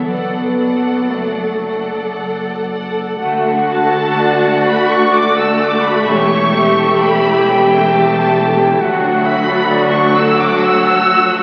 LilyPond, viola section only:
\new Staff \with { instrumentName = "Viola section" } { \time 3/4 \key d \major \tempo 4 = 64 << { a'8 a'4 a'4 a'8 | a2.~ | a2. | fis2. | } \\ { r2. | fis'2. | g'2. | fis'2. | } >> }